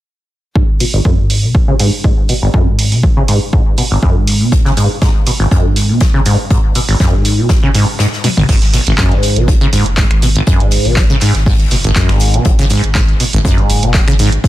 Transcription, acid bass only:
0.56 G#2
0.80 B2
0.94 G#1
1.05 F#2
1.18 G#2
1.43 B2
1.55 G#3
1.68 C#3
1.79 G#2
2.04 G#2
2.29 B2
2.42 G#1
2.54 F#2
2.67 G#2
2.92 B2
3.03 G#3
3.17 C#3
3.28 G#2
3.53 G#2
3.78 B2
3.91 G#1
4.03 F#2
4.16 G#2
4.41 B2
4.52 G#3
4.65 C#3
4.77 G#2
5.02 G#2
5.27 B2
5.40 G#1
5.51 F#2
5.65 G#2
5.89 B2
6.01 G#3
6.14 C#3
6.26 G#2
6.51 G#2
6.75 B2
6.89 G#1
7.00 F#2
7.13 G#2
7.38 B2
7.50 G#3
7.63 C#3
7.74 G#2
7.99 G#2
8.24 B2
8.37 G#1
8.49 G#2
8.74 B2
8.87 G#1
8.98 F#2
9.12 G#2
9.36 B2
9.48 G#3
9.61 C#3
9.73 G#2
9.98 G#2
10.22 B2
10.35 G#1
10.47 F#2
10.60 G#2
10.85 B2
10.97 G#3
11.10 C#3
11.22 G#2
11.46 G#2
11.71 B2
11.84 G#1
11.96 F#2
12.09 G#2
12.34 B2
12.46 G#3
12.59 C#3
12.70 G#2
12.95 G#2
13.20 B2
13.33 G#1
13.45 F#2
13.58 G#2
13.83 B2
13.94 G#3
14.08 C#3
14.19 G#2
14.44 G#2

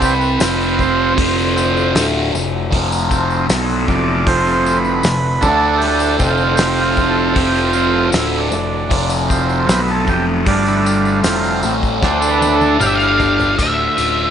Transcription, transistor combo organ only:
Already playing: C3 G3 C4
0.05 B4
0.39 C3 F3 C4
0.80 C5
1.55 C3 F3 C4
3.10 C3 F3 C4
3.89 D5
4.27 C3 F3 C4 C5
4.52 C5
4.77 B4
5.41 D3 A3 D4 A4
5.78 G4
6.18 C3 F3 C4
6.30 F4
6.55 G4
6.81 F4
7.09 A4
7.29 A4
7.36 G4
7.73 C3 F3 C4 F4
8.14 E4
8.38 D4
9.28 C3 F3 C4
9.70 B4
9.91 A4
10.09 G4
10.47 D3 G3 D4 F4
10.68 E4
10.86 F4
11.24 C3 F3 C4
12.03 D3 A3 D4 C5
12.30 B4
12.56 A4
12.82 D3 G3 D4 G4
13.01 E4
13.09 F4
13.60 D3 C4 F4

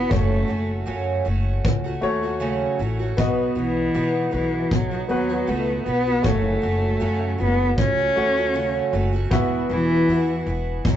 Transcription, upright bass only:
0.11 F#1
0.49 F#1
0.88 F#2
1.26 F#1
1.65 C#2
2.02 D#2
2.79 A1
3.18 B1
3.56 B1
3.95 B2
4.33 B1
4.72 B1
5.09 D#2
5.48 C#2
5.86 B1
6.24 F#1
6.63 F#1
7.02 F#2
7.40 F#1
7.78 C#2
8.17 D#2
8.93 F#1
9.31 E1
9.70 E1
10.08 E2
10.46 E1
10.85 E1

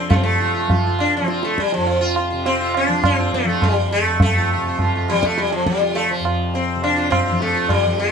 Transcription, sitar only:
0.09 A3 F4
0.16 C4
0.23 A3
0.41 F4
0.55 F4
0.71 F4
0.87 F4
1.00 D4
1.17 C4
1.30 F4
1.44 A3
1.60 G3
1.74 F3
1.87 F4
2.01 F4
2.17 F4
2.30 F4
2.46 C4
2.60 F4
2.77 D4
2.90 F4
3.05 C4
3.20 F4
3.34 A3
3.49 F4
3.63 G3
3.92 A3
4.22 A3
4.38 F4
4.53 F4
4.67 F4
4.82 F4
4.95 F4
5.10 G3
5.25 A3
5.38 G3
5.52 F3
5.67 G3
5.81 F4
5.95 A3
6.11 F3
6.27 F4
6.55 C4
6.84 D4
6.96 F4
7.10 C4
7.27 F4
7.42 A3
7.55 F4
7.70 G3
8.00 A3

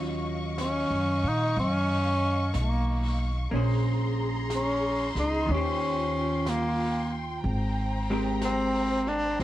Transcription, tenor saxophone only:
0.61 C#4
1.28 D#4
1.60 C#4
2.60 A#3
4.55 C#4
5.19 D#4
5.52 C#4
6.49 A#3
8.45 C4
9.09 D4

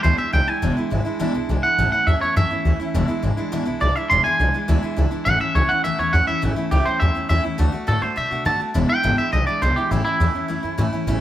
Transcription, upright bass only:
0.04 D2
0.19 muted upright bass stroke
0.33 C#2
0.47 muted upright bass stroke
0.62 E1
0.77 muted upright bass stroke
0.92 G#1
1.05 muted upright bass stroke
1.20 A1
1.35 B1
1.49 B1
1.78 A1
1.93 muted upright bass stroke
2.07 E2
2.22 muted upright bass stroke
2.36 F#2
2.65 D2
2.80 muted upright bass stroke
2.94 E1
3.23 G#1
3.38 muted upright bass stroke
3.52 A1
3.67 B1
3.82 B1
4.11 E1
4.40 B1
4.54 muted upright bass stroke
4.69 D2
4.83 muted upright bass stroke
4.98 C#2
5.12 muted upright bass stroke
5.26 A1
5.40 muted upright bass stroke
5.55 C#2
5.70 muted upright bass stroke
5.84 D2
5.99 E2
6.14 E2
6.43 A1
6.57 muted upright bass stroke
6.72 C#2
7.01 E2
7.16 muted upright bass stroke
7.30 E2
7.59 D2
7.74 muted upright bass stroke
7.88 A2
8.02 muted upright bass stroke
8.18 B2
8.32 B2
8.46 D3
8.60 muted upright bass stroke
8.75 E1
8.90 muted upright bass stroke
9.04 G#1
9.33 B1
9.62 B1
9.76 muted upright bass stroke
9.91 A1
10.06 muted upright bass stroke
10.20 E2
10.34 muted upright bass stroke
10.49 F#2
10.64 F#2
10.78 A2
10.93 muted upright bass stroke
11.07 A1

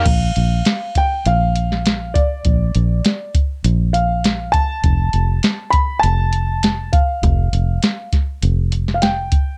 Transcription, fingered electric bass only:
0.06 A#1
0.37 A#1
1.26 A#1
2.45 A#1
2.75 A#1
3.64 A#1
4.84 F1
5.14 F1
6.04 F1
7.23 F1
7.53 F1
8.43 F1

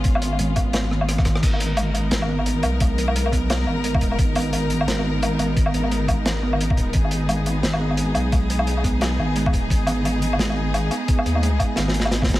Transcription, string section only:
Already playing: G#3 B3 C#4 F4
1.43 G#3 B3 D#4 A#4
6.94 G#4

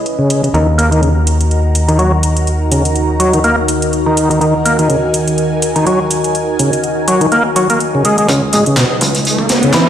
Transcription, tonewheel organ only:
0.19 C#3
0.43 C#3
0.54 D#3
0.78 A#3
0.91 D#3
1.02 C#3
1.88 D#3
1.99 F#3
2.72 C#3
3.20 F#3
3.34 D#3
3.44 A#3
4.06 D#3
4.30 D#3
4.41 D#3
4.66 A#3
4.79 D#3
4.90 C#3
5.76 D#3
5.87 F#3
6.59 C#3
7.08 F#3
7.21 D#3
7.32 A#3
7.56 F#3
7.70 A#3
7.95 C#3
8.05 G#3
8.19 G#3
8.29 C#3
8.53 G#3
8.67 C#3
8.78 B2
9.64 C#3
9.74 E3

